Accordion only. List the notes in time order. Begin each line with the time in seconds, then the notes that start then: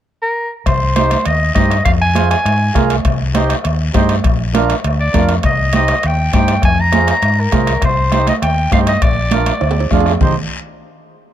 0.96 D#4 G4 C5
1.55 D#4 G4 C5
2.15 F4 G#4 C5
2.74 F4 G#4 A#4
3.34 D#4 G4 C5
3.94 D#4 G4 C5
4.54 D4 F4 A#4
5.14 D4 F4 A#4
5.74 D#4 G4 C5
6.33 D#4 G4 C5
6.93 F4 G#4 C5
7.52 F4 G#4 C5
8.11 D#4 G4 C5
8.72 D#4 G4 C5
9.32 D4 F4 A#4
9.92 D4 F4 G#4
10.22 D#4 G4 C5